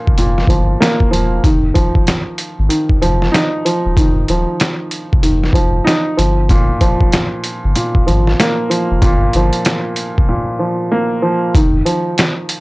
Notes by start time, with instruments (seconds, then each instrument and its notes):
Already playing: grand piano A#2 F3 A#3
0.07 sub bass F1, kick
0.18 grand piano A#2, closed hi-hat
0.38 snare
0.47 sub bass G1, grand piano F3, kick, closed hi-hat
0.80 grand piano A#3, snare, closed hi-hat
1.00 kick
1.11 sub bass E1, grand piano F3, closed hi-hat
1.44 sub bass F1, grand piano D#3, kick, closed hi-hat
1.74 grand piano F3, kick, closed hi-hat
1.95 kick
2.07 snare, closed hi-hat
2.38 closed hi-hat
2.59 sub bass G#1
2.69 grand piano D#3, closed hi-hat
2.89 kick
3.02 sub bass F1, grand piano F3, closed hi-hat
3.22 snare
3.32 grand piano D#4, snare, closed hi-hat
3.65 grand piano F3, closed hi-hat
3.85 sub bass D#1
3.97 sub bass F1, grand piano D#3, kick, closed hi-hat
4.28 sub bass D#1, grand piano F3, closed hi-hat
4.60 snare, closed hi-hat
4.91 closed hi-hat
5.13 sub bass F1, kick
5.23 grand piano D#3, closed hi-hat
5.43 snare
5.53 sub bass F1, grand piano F3, kick, closed hi-hat
5.84 grand piano D#4, snare, closed hi-hat
6.17 sub bass G1, grand piano F3, closed hi-hat
6.49 grand piano A#2, kick, closed hi-hat
6.81 grand piano F3, kick, closed hi-hat
7.01 kick
7.12 snare, closed hi-hat
7.44 closed hi-hat
7.64 sub bass G1
7.76 grand piano A#2, closed hi-hat
7.95 kick
8.07 sub bass G#1, grand piano F3, closed hi-hat
8.27 snare
8.40 grand piano A#3, snare, closed hi-hat
8.70 grand piano F3, closed hi-hat
8.91 sub bass F1
9.02 sub bass G1, grand piano A#2, kick, closed hi-hat
9.33 sub bass G1, grand piano F3, closed hi-hat
9.53 closed hi-hat
9.65 snare, closed hi-hat
9.96 closed hi-hat
10.18 sub bass F1, kick
10.29 grand piano A#2
10.59 grand piano F3
10.91 grand piano A#3
11.22 grand piano F3
11.55 sub bass F1, grand piano D#3, kick, closed hi-hat
11.85 grand piano F3, closed hi-hat
12.18 snare, closed hi-hat
12.49 closed hi-hat